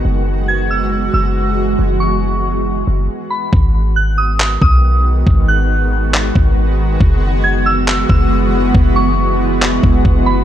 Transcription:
<<
  \new Staff \with { instrumentName = "Synth bell" } { \time 4/4 \key gis \minor \tempo 4 = 138 r4 gis'''8 e'''4 e'''4. | r8 cis'''2. b''8 | r4 fis'''8 dis'''4 dis'''4. | r8 fis'''2~ fis'''8 r4 |
r4 gis'''8 e'''4 e'''4. | r8 cis'''2. b''8 | }
  \new Staff \with { instrumentName = "Ambient pad" } { \clef bass \time 4/4 \key gis \minor << { <gis b fis'>1~ | <gis b fis'>2. r4 | <gis b fis'>1~ | <gis b fis'>1~ |
<gis b fis'>1~ | <gis b fis'>1 | } \\ { e1~ | e2. r4 | dis1~ | dis1 |
e1~ | e1 | } >> }
  \new Staff \with { instrumentName = "808-style bass" } { \clef bass \time 4/4 \key gis \minor fis,,2~ fis,,8 fis,,4. | fis,,2~ fis,,8 fis,,8 r4 | gis,,2~ gis,,8 b,,4. | gis,,2~ gis,,8 gis,,4. |
fis,,2~ fis,,8 fis,,4. | fis,,2~ fis,,8 fis,,8 fis,,4 | }
  \new DrumStaff \with { instrumentName = "Drums" } \drummode { \time 4/4 r4 r4 r4 r4 | r4 r4 r4 r4 | bd4 r4 hc8 bd8 r4 | bd4 r4 hc8 bd8 r4 |
bd4 r4 hc8 bd8 r4 | bd4 r4 hc8 bd8 bd4 | }
>>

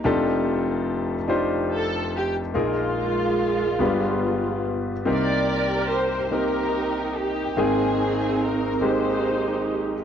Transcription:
<<
  \new Staff \with { instrumentName = "String section" } { \time 6/8 \key c \minor \tempo 4. = 48 << { r2 a'8 g'8 | f'2~ f'8 r8 | d''4 c''8 bes'4 g'8 | aes'4 bes'8 c''4 r8 | } \\ { r2. | aes2~ aes8 r8 | <g' bes'>4. <ees' g'>4. | <c' ees'>4. <ees' g'>4. | } >> }
  \new Staff \with { instrumentName = "Grand piano" } { \time 6/8 \key c \minor <d' ees' f' g' a'>4. <d' ees' f' g' c''>4. | <bes ees' f' aes' bes'>4. <b d' f' g' b'>4. | <bes c' ees' g' bes'>4. <bes c' ees' g' bes'>4. | <bes c' ees' aes' g''>4. <aes bes c' ees' g'>4. | }
  \new Staff \with { instrumentName = "Grand piano" } { \clef bass \time 6/8 \key c \minor <f,, f,>2. | <bes,, bes,>4. <g,, g,>4. | <c, c>2. | <aes,, aes,>2. | }
>>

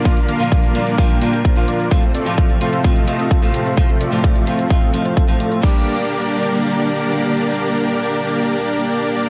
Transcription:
<<
  \new Staff \with { instrumentName = "Supersaw synth" } { \time 4/4 \key g \minor \tempo 4 = 129 <bes d' f' bes' d''>8 <bes d' f' bes' f''>8 <bes d' f' bes' f''>8 <bes d' f' bes' d''>8 <bes d' f' bes' g''>8 <bes d' f' bes' g''>8 <bes d' f' bes' c''>8 <bes d' f' bes' d''>8 | <a c' f' a' c''>8 <a c' f' a' d''>8 <a c' f' a' d''>8 <a c' f' a' c''>8 <a c' f' a' ees''>8 <a c' f' a' ees''>8 <a c' f' a' c''>8 <a c' f' a' c''>8 | <a c' f' a' c''>8 <a c' f' a' d''>8 <a c' f' a' d''>8 <a c' f' a' c''>8 <a c' f' a' ees''>8 <a c' f' a' ees''>16 <a c' f' a' c''>16 <a c' f' a' c''>8 <a c' f' a' d''>16 <a c' f' a' c''>16 | <bes d' g' bes' d''>1~ |
<bes d' g' bes' d''>1 | }
  \new Staff \with { instrumentName = "Clean electric guitar" } { \time 4/4 \key g \minor <bes, f bes d' f'>16 r8 <bes, f bes d' f'>8. <bes, f bes d' f'>8 <bes, f bes d' f'>8 <bes, f bes d' f'>8. <bes, f bes d' f'>8. | <a, f a c' f'>16 r8 <a, f a c' f'>8. <a, f a c' f'>8 <a, f a c' f'>8 <a, f a c' f'>8. <a, f a c' f'>8. | <a, f a c' f'>16 r8 <a, f a c' f'>8. <a, f a c' f'>8 <a, f a c' f'>8 <a, f a c' f'>8. <a, f a c' f'>8. | <g bes d' g'>1~ |
<g bes d' g'>1 | }
  \new Staff \with { instrumentName = "String section" } { \clef bass \time 4/4 \key g \minor <d g bes>1 | <c f a>1~ | <c f a>1 | <d g bes>1~ |
<d g bes>1 | }
  \new DrumStaff \with { instrumentName = "Drums" } \drummode { \time 4/4 <hh bd>16 hh16 hh16 hh16 <hh bd>16 hh16 hh16 hh16 <hh bd>16 hh16 hh16 hh16 <hh bd>16 hh16 hh16 hh16 | <hh bd>16 hh16 hh16 hh16 <hh bd>16 hh16 hh16 hh16 <hh bd>16 hh16 hh16 hh16 <hh bd>16 hh16 hh16 hh16 | <hh bd>16 hh16 hh16 hh16 <hh bd>16 hh16 hh16 hh16 <hh bd>16 hh16 hh16 hh16 <hh bd>16 hh16 hh16 hh16 | <cymc bd>4 r4 r4 r4 |
r4 r4 r4 r4 | }
>>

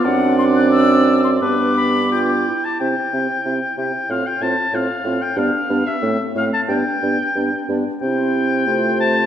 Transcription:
<<
  \new Staff \with { instrumentName = "Oboe" } { \time 2/4 \key c \major \tempo 4 = 91 d''2 | b'8 b''8 g''8. a''16 | g''4. g''8 | f''16 g''16 a''8 f''8. g''16 |
f''8. e''8. f''16 a''16 | g''4. r8 | g''4. a''8 | }
  \new Staff \with { instrumentName = "Flute" } { \time 2/4 \key c \major fis''8 c'''16 fis'''16 e'''8. c'''16 | d'''4. r8 | e''8 e''8 e''8 e''8 | c''8 c''8 c''8 c''8 |
d''8 d''8 a'8 a'8 | d''8 d''8 d''8 d''8 | c''4 c''4 | }
  \new Staff \with { instrumentName = "Clarinet" } { \time 2/4 \key c \major d'2 | d'4 f'8 e'8 | e'8 e'8 e'8 e'8 | f'8 f'8 f'8 f'8 |
d'8 d'8 c'8 c'8 | d'8 d'8 d'8 d'8 | e'4 f'4 | }
  \new Staff \with { instrumentName = "French horn" } { \time 2/4 \key c \major c'2 | b4. r8 | c'8 c'8 c'8 c'8 | c'8 c'8 c'8 c'8 |
b8 b8 a8 a8 | b8 b8 b8 b8 | c'4 a4 | }
  \new Staff \with { instrumentName = "Bassoon" } { \clef bass \time 2/4 \key c \major fis,2 | g,4. r8 | c8 c8 c8 c8 | a,8 a,8 a,8 a,8 |
g,8 g,8 a,8 a,8 | g,8 g,8 g,8 g,8 | c4 c4 | }
>>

